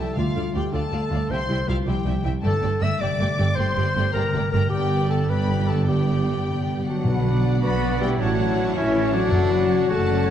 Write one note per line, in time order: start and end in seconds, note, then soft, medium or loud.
0.00 0.19 C3 soft
0.00 0.19 G3 soft
0.00 0.19 E4 soft
0.00 0.18 A4 medium
0.00 0.20 E5 soft
0.00 0.08 E5 soft
0.00 0.08 G5 soft
0.00 0.18 A5 medium
0.16 0.25 D2 soft
0.16 0.24 D3 soft
0.16 0.70 D3 medium
0.16 1.32 D3 soft
0.16 0.25 F4 soft
0.16 0.59 F4 medium
0.16 0.25 D5 soft
0.16 0.54 F5 medium
0.16 0.26 F5 soft
0.36 0.43 D2 soft
0.36 0.43 D2 medium
0.36 0.44 D3 soft
0.36 1.32 D4 soft
0.36 0.44 F4 soft
0.36 0.44 D5 soft
0.36 0.44 F5 soft
0.54 0.62 D2 soft
0.54 0.63 D2 soft
0.54 0.62 D3 soft
0.54 0.91 A3 soft
0.54 0.62 F4 soft
0.54 0.73 G4 medium
0.54 0.62 D5 soft
0.54 0.62 F5 soft
0.54 0.74 G5 soft
0.72 0.81 D2 soft
0.72 0.80 D3 soft
0.72 1.06 G3 soft
0.72 0.80 F4 soft
0.72 1.32 A4 medium
0.72 0.82 D5 soft
0.72 0.82 F5 soft
0.72 1.30 A5 medium
0.91 0.99 D2 soft
0.91 1.00 D2 soft
0.91 1.00 D3 soft
0.91 1.32 A3 soft
0.91 1.00 F4 soft
0.91 1.01 D5 soft
0.91 1.01 F5 soft
1.10 1.19 D2 medium
1.10 1.19 D2 soft
1.10 1.19 D3 soft
1.10 1.18 F4 soft
1.10 1.21 D5 soft
1.10 1.32 F5 soft
1.10 1.20 F5 soft
1.29 1.38 C2 medium
1.29 2.45 C3 soft
1.29 1.38 G3 soft
1.29 1.38 E4 soft
1.29 1.70 C5 medium
1.29 1.40 E5 soft
1.29 1.39 G5 soft
1.29 1.67 C6 medium
1.48 1.56 C2 medium
1.48 1.57 C2 soft
1.48 1.56 G3 soft
1.48 2.45 E4 soft
1.48 1.56 E4 soft
1.48 1.58 E5 soft
1.48 1.59 G5 soft
1.66 1.76 C2 soft
1.66 2.05 G3 soft
1.66 1.75 G3 soft
1.66 1.75 E4 soft
1.66 1.89 F4 medium
1.66 1.76 E5 soft
1.66 1.76 F5 medium
1.66 1.77 G5 soft
1.86 1.94 C2 medium
1.86 1.95 C2 medium
1.86 2.19 F3 soft
1.86 1.94 G3 soft
1.86 1.94 E4 soft
1.86 2.25 G4 medium
1.86 1.96 E5 soft
1.86 2.24 G5 soft
1.86 1.96 G5 soft
2.05 2.13 C2 medium
2.05 2.14 C2 medium
2.05 2.13 G3 soft
2.05 5.96 G3 soft
2.05 2.13 E4 soft
2.05 2.14 E5 soft
2.05 2.14 G5 soft
2.23 2.32 C2 medium
2.23 2.33 C2 medium
2.23 2.31 G3 soft
2.23 2.31 E4 soft
2.23 2.45 C5 soft
2.23 2.33 E5 soft
2.23 2.32 G5 soft
2.42 2.51 G1 medium
2.42 3.55 G2 medium
2.42 2.51 G2 medium
2.42 2.51 A3 medium
2.42 2.51 G4 medium
2.42 2.85 A4 medium
2.42 2.52 D5 soft
2.42 2.52 G5 medium
2.42 2.78 A5 medium
2.62 2.70 G1 medium
2.62 2.70 G2 medium
2.62 2.70 A3 soft
2.62 3.75 D4 soft
2.62 2.70 G4 soft
2.62 2.70 D5 soft
2.62 2.70 G5 soft
2.81 2.89 G1 medium
2.81 2.89 G2 medium
2.81 3.17 D3 medium
2.81 2.89 A3 medium
2.81 2.89 G4 soft
2.81 2.89 D5 medium
2.81 3.03 E5 medium
2.81 2.89 G5 medium
2.81 3.00 E6 medium
2.99 3.07 G1 medium
2.99 3.08 G2 medium
2.99 3.32 C3 soft
2.99 3.08 A3 medium
2.99 3.08 G4 medium
2.99 3.57 D5 medium
2.99 3.09 D5 medium
2.99 3.09 G5 medium
2.99 3.57 D6 medium
3.18 3.27 G1 medium
3.18 3.27 G2 medium
3.18 3.94 D3 soft
3.18 3.28 A3 soft
3.18 3.28 G4 medium
3.18 3.28 D5 medium
3.18 3.28 G5 medium
3.37 3.46 G1 medium
3.37 3.46 G2 medium
3.37 3.46 A3 medium
3.37 3.46 G4 medium
3.37 4.51 A#4 soft
3.37 3.47 D5 medium
3.37 3.46 G5 medium
3.56 3.65 G1 medium
3.56 4.70 G2 medium
3.56 3.65 G2 medium
3.56 3.66 A3 medium
3.56 3.66 G4 medium
3.56 4.13 C5 loud
3.56 3.66 D5 medium
3.56 3.65 G5 medium
3.56 4.14 C6 medium
3.76 3.83 G1 medium
3.76 3.84 G2 medium
3.76 3.84 A3 medium
3.76 4.90 D4 soft
3.76 3.84 G4 soft
3.76 3.86 D5 soft
3.76 3.86 G5 medium
3.95 4.03 G1 medium
3.95 4.03 G2 medium
3.95 4.32 D3 medium
3.95 4.04 A3 medium
3.95 4.04 G4 medium
3.95 4.05 D5 medium
3.95 4.04 G5 medium
4.13 4.22 G1 medium
4.13 4.22 G2 medium
4.13 4.47 C3 soft
4.13 4.22 A3 medium
4.13 4.22 G4 medium
4.13 4.51 A#4 medium
4.13 4.24 D5 medium
4.13 4.23 G5 medium
4.13 4.51 A#5 medium
4.33 4.41 G1 medium
4.33 4.41 G2 medium
4.33 4.73 D3 medium
4.33 4.42 A3 medium
4.33 4.41 G4 medium
4.33 4.43 D5 medium
4.33 4.43 G5 medium
4.52 4.60 G1 medium
4.52 4.61 G2 medium
4.52 4.60 A3 medium
4.52 4.61 G4 medium
4.52 4.69 A#4 medium
4.52 4.73 A#4 soft
4.52 4.61 D5 medium
4.52 4.62 G5 medium
4.52 4.71 A#5 medium
4.70 6.82 G1 medium
4.70 5.86 G2 medium
4.70 6.83 G2 medium
4.70 5.25 B3 medium
4.70 5.08 G4 medium
4.70 5.25 G4 medium
4.70 5.26 D5 medium
4.70 5.09 G5 medium
4.70 5.26 G5 medium
4.91 6.06 D4 soft
5.09 5.47 D3 soft
5.09 5.31 A4 medium
5.09 5.29 A5 medium
5.29 5.62 C3 soft
5.29 5.87 B3 soft
5.29 5.87 G4 soft
5.29 5.68 B4 medium
5.29 5.87 D5 medium
5.29 5.87 G5 soft
5.29 5.68 B5 medium
5.49 6.27 D3 soft
5.67 5.90 A4 medium
5.67 6.85 B4 soft
5.67 5.88 A5 medium
5.88 7.07 G2 soft
5.88 6.84 B3 medium
5.88 6.86 G4 medium
5.88 6.84 G4 medium
5.88 6.85 D5 soft
5.88 6.84 G5 medium
5.88 6.85 G5 medium
6.08 7.24 D4 soft
6.29 6.66 D3 soft
6.48 6.81 C3 soft
6.68 7.07 D3 soft
6.86 7.59 F#3 medium
6.86 7.59 D4 medium
6.86 7.59 F#4 medium
6.86 8.21 B4 soft
6.86 7.59 F#5 medium
7.05 7.56 B1 medium
7.05 7.58 B2 medium
7.05 8.21 B2 medium
7.05 7.59 B4 medium
7.25 7.81 B3 soft
7.25 7.62 D4 soft
7.25 7.81 D4 soft
7.25 7.81 D5 soft
7.25 7.80 F#5 soft
7.44 7.81 F#3 soft
7.62 8.13 B1 medium
7.62 8.00 B3 medium
7.62 8.00 D4 medium
7.62 8.03 F#4 medium
7.62 8.01 B4 medium
7.62 8.20 D5 medium
7.62 8.00 B5 medium
7.81 8.21 F#3 soft
7.81 8.19 B3 medium
7.81 8.19 D4 medium
7.81 8.19 D5 medium
7.81 8.18 F#5 medium
8.00 8.20 G3 medium
8.00 8.21 D4 soft
8.00 8.22 E4 medium
8.00 8.19 G4 medium
8.00 8.09 G5 medium
8.19 8.69 A1 medium
8.19 9.34 A2 medium
8.19 8.76 F#3 medium
8.19 8.37 C#4 medium
8.19 8.75 D4 medium
8.19 8.37 E4 medium
8.19 8.76 F#4 medium
8.19 8.73 C#5 medium
8.19 8.36 C#5 medium
8.19 8.75 F#5 medium
8.19 8.36 A5 medium
8.37 8.93 C#4 medium
8.37 8.93 E4 medium
8.37 8.76 E4 medium
8.37 8.93 C#5 medium
8.37 8.93 A5 medium
8.57 8.95 E3 medium
8.75 9.25 A1 medium
8.75 9.13 E3 medium
8.75 9.13 C#4 medium
8.75 9.13 E4 medium
8.75 9.30 C#5 medium
8.75 9.13 E5 medium
8.94 9.34 E3 medium
8.94 9.31 C#4 medium
8.94 9.31 E4 medium
8.94 9.32 C#5 medium
8.94 9.32 A5 medium
9.12 9.89 F#3 medium
9.12 9.87 D4 medium
9.12 9.34 E4 medium
9.12 9.88 F#4 loud
9.12 9.87 F#5 medium
9.30 9.82 F#1 medium
9.30 9.85 F#2 medium
9.30 10.30 F#2 medium
9.30 9.50 A4 medium
9.50 10.07 C#4 medium
9.50 10.07 F#4 medium
9.50 9.89 F#4 medium
9.50 9.70 B4 medium
9.50 10.08 C#5 medium
9.50 10.07 A5 medium
9.70 10.08 C#3 medium
9.70 9.76 C#5 medium
9.86 10.30 F#1 medium
9.86 10.30 A3 medium
9.86 10.30 F#4 medium
9.86 10.26 F#4 medium
9.86 9.92 C#5 medium
9.90 10.30 A4 medium
9.90 10.30 A5 medium
10.06 10.30 C#3 soft
10.06 10.30 C#4 medium
10.06 10.30 F#4 medium
10.06 10.30 C#5 medium
10.06 10.26 D5 medium
10.06 10.30 A5 medium
10.25 10.30 C#5 medium